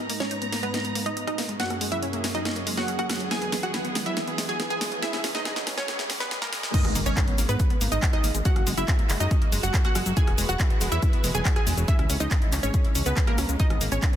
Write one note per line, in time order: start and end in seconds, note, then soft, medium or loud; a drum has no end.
0.00 1.58 G#2 medium
0.00 1.58 G#3 medium
0.00 1.58 B3 medium
0.00 0.16 D#4 medium
0.00 1.58 D#4 medium
0.00 0.16 D#5 medium
0.00 1.58 A#5 medium
0.00 riser medium
0.10 0.15 A#3 medium
0.10 open hi-hat loud
0.20 0.25 G#3 medium
0.20 0.58 C#4 medium
0.20 0.58 C#5 medium
0.20 snare soft
0.20 closed hi-hat medium
0.31 0.39 D#4 loud
0.31 closed hi-hat medium
0.42 0.47 B3 medium
0.42 closed hi-hat medium
0.52 0.58 A#3 loud
0.52 snare medium
0.52 open hi-hat loud
0.63 0.71 G#3 medium
0.63 1.01 B3 medium
0.63 1.01 B4 medium
0.63 closed hi-hat medium
0.74 0.79 D#4 medium
0.74 snare soft
0.74 closed hi-hat medium
0.85 0.90 B3 medium
0.85 closed hi-hat medium
0.95 1.00 A#3 loud
0.95 open hi-hat loud
1.06 1.09 G#3 loud
1.06 1.25 D#4 medium
1.06 1.25 D#5 medium
1.06 closed hi-hat medium
1.17 1.22 D#4 medium
1.17 closed hi-hat medium
1.27 1.33 B3 medium
1.27 1.56 D#4 medium
1.27 1.56 D#5 medium
1.27 cross-stick medium
1.27 closed hi-hat medium
1.38 1.41 A#3 loud
1.38 snare medium
1.38 open hi-hat loud
1.49 1.57 G#3 medium
1.49 closed hi-hat medium
1.60 3.29 F#2 medium
1.60 4.99 F#3 medium
1.60 3.29 A#3 medium
1.60 1.65 C#4 medium
1.60 3.29 C#4 medium
1.60 1.88 F#4 medium
1.60 6.70 G#4 medium
1.60 1.88 F#5 loud
1.60 snare medium
1.60 closed hi-hat medium
1.70 1.75 A#3 medium
1.70 cross-stick medium
1.70 closed hi-hat medium
1.81 1.86 G#3 loud
1.81 open hi-hat loud
1.92 1.97 F#3 medium
1.92 2.29 E4 medium
1.92 2.29 E5 medium
1.92 closed hi-hat medium
2.03 2.10 C#4 loud
2.03 closed hi-hat medium
2.13 2.18 A#3 medium
2.13 closed hi-hat medium
2.24 2.29 G#3 loud
2.24 snare medium
2.24 open hi-hat loud
2.35 2.42 F#3 medium
2.35 2.72 D#4 medium
2.35 2.72 D#5 medium
2.35 closed hi-hat medium
2.45 2.50 C#4 medium
2.45 snare medium
2.45 closed hi-hat medium
2.56 2.61 A#3 medium
2.56 closed hi-hat medium
2.67 2.72 G#3 loud
2.67 open hi-hat loud
2.77 2.81 F#3 loud
2.77 2.96 F#4 medium
2.77 2.96 F#5 medium
2.77 snare medium
2.77 closed hi-hat medium
2.88 2.93 C#4 medium
2.88 closed hi-hat medium
2.99 3.04 A#3 medium
2.99 3.27 F#4 medium
2.99 3.27 F#5 medium
2.99 cross-stick medium
2.99 closed hi-hat medium
3.10 3.13 G#3 loud
3.10 cross-stick medium
3.10 snare medium
3.10 open hi-hat loud
3.20 3.28 F#3 medium
3.20 closed hi-hat medium
3.31 5.01 E2 medium
3.31 6.71 E3 medium
3.31 5.01 B3 medium
3.31 3.36 E4 medium
3.31 3.59 G#4 medium
3.31 3.59 G#5 loud
3.31 snare medium
3.31 closed hi-hat medium
3.42 3.47 B3 medium
3.42 closed hi-hat medium
3.52 3.58 G#3 loud
3.52 snare medium
3.52 open hi-hat loud
3.63 3.68 F#3 medium
3.63 4.01 F#4 medium
3.63 4.01 F#5 medium
3.63 closed hi-hat medium
3.74 3.82 E4 loud
3.74 snare medium
3.74 closed hi-hat medium
3.85 3.90 B3 medium
3.85 closed hi-hat medium
3.95 4.00 G#3 loud
3.95 snare medium
3.95 open hi-hat loud
4.06 4.14 F#3 medium
4.06 4.43 E4 medium
4.06 4.44 E5 medium
4.06 closed hi-hat medium
4.17 4.22 E4 medium
4.17 snare medium
4.17 closed hi-hat medium
4.27 4.33 B3 medium
4.27 closed hi-hat soft
4.38 4.43 G#3 loud
4.38 snare medium
4.38 open hi-hat loud
4.49 4.52 F#3 loud
4.49 4.68 G#4 medium
4.49 4.68 G#5 medium
4.49 closed hi-hat medium
4.60 4.65 E4 medium
4.60 snare medium
4.60 closed hi-hat medium
4.70 4.75 B3 medium
4.70 4.98 G#4 medium
4.70 4.98 G#5 loud
4.70 closed hi-hat medium
4.81 4.84 G#3 loud
4.81 snare medium
4.81 open hi-hat loud
4.92 4.99 F#3 medium
4.92 closed hi-hat medium
5.02 6.72 C#2 medium
5.02 6.72 C#3 medium
5.02 6.72 G#3 medium
5.02 5.31 E4 medium
5.02 5.08 G#4 medium
5.02 5.31 E5 loud
5.02 snare medium
5.02 closed hi-hat medium
5.13 5.18 E4 medium
5.13 snare medium
5.13 closed hi-hat medium
5.24 5.29 C#4 loud
5.24 snare medium
5.24 open hi-hat loud
5.35 5.40 G#3 medium
5.35 5.72 D#4 medium
5.35 5.72 D#5 loud
5.35 snare medium
5.35 closed hi-hat medium
5.45 5.53 G#4 loud
5.45 snare loud
5.45 closed hi-hat medium
5.56 5.61 E4 medium
5.56 snare medium
5.56 closed hi-hat soft
5.67 5.72 C#4 loud
5.67 snare loud
5.67 open hi-hat loud
5.77 5.85 G#3 medium
5.77 6.15 C#4 medium
5.77 6.15 C#5 medium
5.77 snare medium
5.77 closed hi-hat soft
5.88 5.93 G#4 medium
5.88 snare loud
5.88 closed hi-hat medium
5.88 swell medium
5.99 6.04 E4 medium
5.99 snare medium
5.99 closed hi-hat soft
6.10 6.15 C#4 loud
6.10 snare loud
6.10 open hi-hat loud
6.20 6.23 G#3 loud
6.20 6.39 B3 medium
6.20 6.39 B4 medium
6.20 snare medium
6.31 6.36 G#4 medium
6.31 snare loud
6.31 closed hi-hat medium
6.42 6.70 A#3 medium
6.42 6.47 E4 medium
6.42 6.70 A#4 medium
6.42 snare loud
6.42 closed hi-hat medium
6.53 6.56 C#4 loud
6.53 snare loud
6.53 open hi-hat loud
6.63 6.71 G#3 medium
6.63 snare loud
6.63 closed hi-hat soft
6.74 8.44 G#3 medium
6.74 8.44 B3 medium
6.74 6.79 D#4 medium
6.74 7.02 D#4 medium
6.74 7.02 D#5 loud
6.74 kick loud
6.74 closed hi-hat medium
6.74 crash loud
6.74 impact medium
6.74 shaker soft
6.85 6.92 G#1 medium
6.85 6.90 B3 medium
6.85 cross-stick medium
6.85 closed hi-hat medium
6.95 7.03 G#1 loud
6.95 7.00 A#3 loud
6.95 open hi-hat loud
6.95 shaker medium
7.06 7.13 G#1 medium
7.06 7.11 G#3 medium
7.06 7.44 C#4 medium
7.06 7.44 C#5 medium
7.06 closed hi-hat medium
7.06 shaker soft
7.17 7.24 D#4 loud
7.17 kick loud
7.17 clap loud
7.17 closed hi-hat medium
7.17 shaker soft
7.28 7.33 B3 medium
7.28 closed hi-hat medium
7.38 7.45 G#1 medium
7.38 7.43 A#3 loud
7.38 open hi-hat loud
7.38 shaker medium
7.49 7.56 G#2 medium
7.49 7.57 G#3 medium
7.49 7.86 B3 medium
7.49 7.86 B4 medium
7.49 closed hi-hat medium
7.49 shaker soft
7.60 7.65 D#4 medium
7.60 kick loud
7.60 closed hi-hat medium
7.60 shaker soft
7.70 7.75 B3 medium
7.70 closed hi-hat medium
7.81 7.88 G#1 medium
7.81 7.86 A#3 loud
7.81 open hi-hat loud
7.81 shaker medium
7.92 7.99 G#1 medium
7.92 7.95 G#3 loud
7.92 8.11 D#4 medium
7.92 8.11 D#5 medium
7.92 closed hi-hat medium
7.92 shaker soft
8.02 8.08 D#4 medium
8.02 kick loud
8.02 clap loud
8.02 closed hi-hat medium
8.02 shaker soft
8.13 8.18 B3 medium
8.13 8.41 D#4 medium
8.13 8.41 D#5 loud
8.13 cross-stick medium
8.13 closed hi-hat medium
8.24 8.31 G#1 medium
8.24 8.27 A#3 loud
8.24 open hi-hat loud
8.24 shaker medium
8.35 8.42 G#1 medium
8.35 8.42 G#3 medium
8.35 closed hi-hat medium
8.35 shaker soft
8.45 10.15 G#3 medium
8.45 8.50 C#4 medium
8.45 8.73 F#4 medium
8.45 11.85 F#4 medium
8.45 8.73 F#5 loud
8.45 kick loud
8.45 closed hi-hat medium
8.45 shaker soft
8.56 8.63 F#1 medium
8.56 8.61 A#3 medium
8.56 cross-stick medium
8.56 closed hi-hat medium
8.67 8.74 F#1 loud
8.67 8.72 G#3 loud
8.67 open hi-hat loud
8.67 shaker medium
8.77 8.85 F#1 medium
8.77 8.83 F#3 medium
8.77 9.15 E4 medium
8.77 9.15 E5 loud
8.77 closed hi-hat medium
8.77 shaker soft
8.88 8.96 C#4 loud
8.88 kick loud
8.88 clap loud
8.88 closed hi-hat medium
8.88 shaker soft
8.99 9.04 A#3 medium
8.99 closed hi-hat medium
9.10 9.17 F#1 medium
9.10 9.15 G#3 loud
9.10 clap medium
9.10 open hi-hat loud
9.10 shaker medium
9.20 9.28 F#2 medium
9.20 9.28 F#3 medium
9.20 9.58 D#4 medium
9.20 9.58 D#5 medium
9.20 closed hi-hat medium
9.20 shaker soft
9.31 9.36 C#4 medium
9.31 kick loud
9.31 closed hi-hat medium
9.31 shaker soft
9.42 9.47 A#3 medium
9.42 closed hi-hat medium
9.52 9.60 F#1 medium
9.52 9.58 G#3 loud
9.52 open hi-hat loud
9.52 shaker medium
9.63 9.70 F#1 medium
9.63 9.66 F#3 loud
9.63 9.82 F#4 medium
9.63 9.82 F#5 medium
9.63 closed hi-hat medium
9.63 shaker soft
9.74 9.79 C#4 medium
9.74 kick loud
9.74 clap loud
9.74 closed hi-hat medium
9.74 shaker soft
9.85 9.90 A#3 medium
9.85 10.13 F#4 medium
9.85 10.13 F#5 loud
9.85 cross-stick medium
9.85 closed hi-hat medium
9.95 10.03 F#1 loud
9.95 9.98 G#3 loud
9.95 cross-stick medium
9.95 open hi-hat loud
9.95 shaker medium
10.06 10.13 F#1 medium
10.06 10.14 F#3 medium
10.06 closed hi-hat medium
10.06 shaker soft
10.17 13.56 E3 medium
10.17 10.22 E4 medium
10.17 11.86 E4 medium
10.17 11.87 G#4 medium
10.17 10.45 G#4 medium
10.17 11.86 B4 medium
10.17 10.45 G#5 loud
10.17 kick loud
10.17 closed hi-hat medium
10.17 shaker soft
10.27 10.35 E1 medium
10.27 10.33 B3 medium
10.27 cross-stick medium
10.27 closed hi-hat medium
10.38 10.45 E1 loud
10.38 10.43 G#3 loud
10.38 open hi-hat loud
10.38 shaker medium
10.49 10.56 E1 medium
10.49 10.54 F#3 medium
10.49 10.86 F#4 medium
10.49 10.86 F#5 loud
10.49 closed hi-hat medium
10.49 shaker soft
10.60 10.67 E4 loud
10.60 kick loud
10.60 clap loud
10.60 closed hi-hat medium
10.60 shaker soft
10.70 10.75 B3 medium
10.70 closed hi-hat medium
10.81 10.88 E1 medium
10.81 10.86 G#3 loud
10.81 open hi-hat loud
10.81 shaker medium
10.92 10.99 E2 medium
10.92 10.99 F#3 medium
10.92 11.29 E4 medium
10.92 11.29 E5 loud
10.92 closed hi-hat medium
10.92 shaker soft
11.02 11.08 E4 medium
11.02 kick loud
11.02 closed hi-hat medium
11.02 shaker soft
11.13 11.18 B3 medium
11.13 closed hi-hat medium
11.24 11.31 E1 loud
11.24 11.29 G#3 loud
11.24 open hi-hat loud
11.24 shaker medium
11.34 11.42 E1 medium
11.34 11.38 F#3 loud
11.34 11.53 G#4 medium
11.34 11.53 G#5 medium
11.34 closed hi-hat medium
11.34 shaker soft
11.45 11.50 E4 medium
11.45 kick loud
11.45 clap loud
11.45 closed hi-hat medium
11.45 shaker soft
11.56 11.61 B3 medium
11.56 11.84 G#4 medium
11.56 11.84 G#5 medium
11.56 cross-stick medium
11.56 closed hi-hat medium
11.67 11.74 E1 medium
11.67 11.70 G#3 loud
11.67 open hi-hat loud
11.67 shaker medium
11.77 11.85 E1 medium
11.77 11.85 F#3 medium
11.77 closed hi-hat medium
11.77 shaker soft
11.88 14.16 G#3 medium
11.88 13.58 C#4 medium
11.88 12.16 E4 medium
11.88 11.93 G#4 medium
11.88 12.16 E5 loud
11.88 kick loud
11.88 closed hi-hat medium
11.88 shaker soft
11.99 12.06 C#2 medium
11.99 12.04 E4 medium
11.99 cross-stick medium
11.99 closed hi-hat medium
12.10 12.17 C#2 loud
12.10 12.15 C#4 loud
12.10 open hi-hat loud
12.10 shaker medium
12.20 12.28 C#2 medium
12.20 12.25 G#3 medium
12.20 12.58 D#4 medium
12.20 12.58 D#5 loud
12.20 closed hi-hat soft
12.20 shaker soft
12.31 12.39 G#4 loud
12.31 kick loud
12.31 clap loud
12.31 closed hi-hat medium
12.31 shaker soft
12.42 12.47 E4 medium
12.42 closed hi-hat soft
12.52 12.60 C#2 medium
12.52 12.58 C#4 loud
12.52 clap medium
12.52 open hi-hat loud
12.52 shaker medium
12.63 12.70 G#1 medium
12.63 12.71 G#3 medium
12.63 13.01 C#4 medium
12.63 13.01 C#5 medium
12.63 closed hi-hat medium
12.63 shaker soft
12.74 12.79 G#4 medium
12.74 kick loud
12.74 closed hi-hat medium
12.74 shaker soft
12.85 12.90 E4 medium
12.85 closed hi-hat soft
12.95 13.03 C#2 medium
12.95 13.00 C#4 loud
12.95 open hi-hat loud
12.95 shaker medium
13.06 13.13 C#2 medium
13.06 13.09 G#3 loud
13.06 13.25 B3 medium
13.06 13.25 B4 medium
13.06 closed hi-hat soft
13.06 shaker soft
13.17 13.22 G#4 medium
13.17 kick loud
13.17 clap loud
13.17 closed hi-hat medium
13.17 shaker soft
13.27 13.56 A#3 medium
13.27 13.33 E4 medium
13.27 13.56 A#4 medium
13.27 cross-stick medium
13.27 closed hi-hat medium
13.38 13.45 C#2 medium
13.38 13.41 C#4 loud
13.38 cross-stick medium
13.38 open hi-hat loud
13.38 shaker medium
13.49 13.56 C#2 medium
13.49 13.57 G#3 medium
13.49 closed hi-hat soft
13.49 shaker soft
13.60 14.16 B3 medium
13.60 13.65 D#4 medium
13.60 13.88 D#4 medium
13.60 13.88 D#5 loud
13.60 kick loud
13.60 closed hi-hat medium
13.60 shaker soft
13.70 13.78 G#1 medium
13.70 13.75 B3 medium
13.70 cross-stick medium
13.70 closed hi-hat medium
13.81 13.88 G#1 loud
13.81 13.86 A#3 loud
13.81 open hi-hat loud
13.81 shaker medium
13.92 13.99 G#1 medium
13.92 13.97 G#3 medium
13.92 14.16 C#4 medium
13.92 14.16 C#5 medium
13.92 closed hi-hat medium
13.92 shaker soft
14.02 14.10 D#4 loud
14.02 kick loud
14.02 clap loud
14.02 closed hi-hat medium
14.02 shaker soft
14.13 14.16 B3 medium